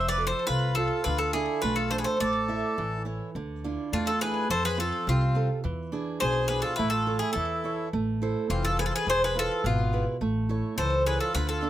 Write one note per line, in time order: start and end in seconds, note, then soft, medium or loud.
0.00 0.31 F1 medium
0.00 0.46 F3 medium
0.09 0.28 B4 medium
0.09 0.26 D5 medium
0.18 0.65 F4 medium
0.18 0.65 A4 soft
0.18 0.65 C5 soft
0.27 0.47 A4 medium
0.27 0.46 C5 medium
0.47 0.89 C2 medium
0.47 1.04 C3 medium
0.47 0.75 F4 medium
0.47 0.74 B4 medium
0.75 1.04 F4 medium
0.75 1.00 F4 soft
0.75 1.06 A4 medium
0.75 1.00 A4 soft
0.75 1.00 C5 medium
1.04 1.46 D2 medium
1.04 1.62 D3 medium
1.04 1.18 F4 medium
1.04 1.18 B4 medium
1.18 1.34 F4 medium
1.18 1.33 A4 medium
1.33 1.80 D4 medium
1.33 1.61 E4 medium
1.33 1.81 F4 medium
1.33 1.61 G#4 medium
1.33 1.81 A4 medium
1.62 2.04 B1 medium
1.62 2.19 A3 medium
1.62 1.75 F4 medium
1.62 1.76 B4 medium
1.76 1.91 F4 medium
1.76 1.90 A4 medium
1.90 2.15 D4 soft
1.90 2.15 F4 soft
1.90 1.98 A4 medium
1.90 2.15 A4 medium
1.90 1.98 C5 medium
1.98 2.06 G#4 medium
1.98 2.04 B4 medium
2.04 2.18 A4 medium
2.04 2.19 C5 medium
2.20 2.61 A1 medium
2.20 2.76 A3 medium
2.20 3.03 A4 medium
2.20 3.03 D5 medium
2.48 2.95 E4 medium
2.48 2.95 A4 soft
2.48 2.95 E5 medium
2.78 3.18 A1 medium
2.78 3.34 E3 medium
3.05 3.29 E4 soft
3.05 3.29 A4 soft
3.05 3.29 C#5 medium
3.35 3.75 D2 medium
3.35 3.91 D3 medium
3.64 4.10 D4 medium
3.64 4.11 E4 soft
3.64 4.11 F4 medium
3.92 4.33 E2 medium
3.92 4.49 A3 medium
3.92 4.06 D4 medium
3.92 4.07 F4 medium
4.06 4.20 F4 medium
4.06 4.21 A4 medium
4.21 4.44 D4 medium
4.21 4.45 E4 soft
4.21 4.45 F4 medium
4.21 4.48 G#4 medium
4.21 4.48 B4 medium
4.50 4.90 F2 medium
4.50 5.06 F3 medium
4.50 4.63 A4 medium
4.50 4.65 C5 loud
4.65 4.78 G#4 medium
4.65 4.79 B4 medium
4.78 5.24 C4 medium
4.78 5.24 F4 soft
4.78 5.06 F4 medium
4.78 5.24 A4 soft
4.78 5.06 A4 medium
5.07 5.47 C2 medium
5.07 5.63 C3 medium
5.07 5.48 C4 medium
5.07 5.48 F4 medium
5.35 5.58 C4 soft
5.35 5.59 F4 soft
5.35 5.59 A4 soft
5.64 6.05 E2 medium
5.64 6.20 E3 medium
5.92 6.38 D4 medium
5.92 6.38 E4 soft
5.92 6.39 G#4 medium
6.20 6.62 B1 medium
6.20 6.77 B2 medium
6.20 6.48 G#4 medium
6.20 6.47 C5 medium
6.48 6.73 D4 soft
6.48 6.73 E4 soft
6.48 6.63 G#4 medium
6.48 6.73 G#4 medium
6.48 6.61 B4 medium
6.62 6.77 F4 medium
6.62 6.75 A4 medium
6.76 7.19 A1 medium
6.76 7.34 A3 medium
6.76 6.91 E4 medium
6.76 6.89 B4 medium
6.90 7.19 F4 medium
6.90 7.18 A4 medium
7.06 7.52 E4 medium
7.06 7.53 A4 medium
7.06 7.53 C#5 soft
7.19 7.34 E4 medium
7.19 7.32 G#4 medium
7.33 7.76 E2 medium
7.33 7.91 E3 medium
7.33 7.89 E4 medium
7.33 7.87 A4 medium
7.64 7.87 E4 soft
7.64 7.87 A4 soft
7.64 7.88 C#5 medium
7.93 8.33 A1 loud
7.93 8.48 A3 medium
8.22 8.67 E4 medium
8.22 8.67 A4 soft
8.22 8.68 C5 medium
8.50 8.90 F1 medium
8.50 9.05 E3 medium
8.50 8.64 C4 medium
8.50 8.63 F4 medium
8.65 8.78 F4 medium
8.65 8.78 A4 medium
8.79 9.02 E4 soft
8.79 8.86 G#4 medium
8.79 9.01 A4 soft
8.79 8.85 B4 medium
8.79 9.02 C5 medium
8.86 8.93 F4 medium
8.86 8.93 A4 medium
8.94 9.07 G#4 medium
8.94 9.07 B4 medium
9.07 9.47 E1 medium
9.07 9.62 E3 medium
9.07 9.21 G#4 loud
9.07 9.22 C5 medium
9.23 9.35 G#4 medium
9.23 9.36 B4 medium
9.35 9.81 E4 medium
9.35 9.62 F4 medium
9.35 9.81 G#4 soft
9.35 9.64 A4 loud
9.35 9.81 B4 soft
9.64 10.04 G#1 loud
9.64 10.19 B2 medium
9.64 10.04 B3 medium
9.64 10.05 F4 medium
9.93 10.15 E4 soft
9.93 10.16 G#4 soft
9.93 10.16 B4 medium
10.21 10.60 A1 medium
10.21 10.76 A3 medium
10.49 10.95 E4 medium
10.49 10.95 A4 soft
10.49 10.95 C#5 medium
10.77 11.17 C#2 medium
10.77 11.33 E3 medium
10.77 11.03 A4 medium
10.77 11.04 C5 medium
11.06 11.29 E4 soft
11.06 11.19 G#4 medium
11.06 11.29 A4 soft
11.06 11.20 B4 medium
11.06 11.29 C#5 soft
11.20 11.33 F4 medium
11.20 11.34 A4 medium
11.35 11.70 D2 medium
11.35 11.70 D3 medium
11.35 11.48 F4 medium
11.35 11.48 B4 medium
11.49 11.70 F4 medium
11.49 11.70 A4 medium
11.62 11.70 D4 medium
11.62 11.70 F4 medium
11.62 11.70 A4 medium